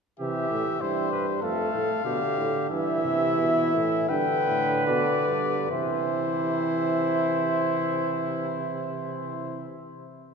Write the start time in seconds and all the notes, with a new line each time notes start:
0.20 C3 E3 G4 E5
0.50 A2
0.80 G2 G3 E4 C5
1.12 B4
1.41 F2 A3 A4 F5
1.74 A2
2.04 B2 D3 G4
2.38 A2
2.70 G2 E3 E4 E5
3.04 C3
3.38 B2
3.74 A2
4.09 G2 D3 B4 G5
4.48 A2
4.87 B2 D5
5.28 G2
5.70 C3 E3 E4 C5